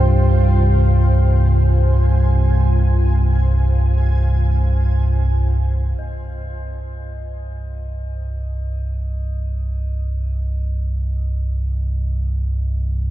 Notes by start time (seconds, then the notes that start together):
Already playing: C2 G2 C4 F4 C5 G5
0.73 G#5
5.97 C2 G2 D#5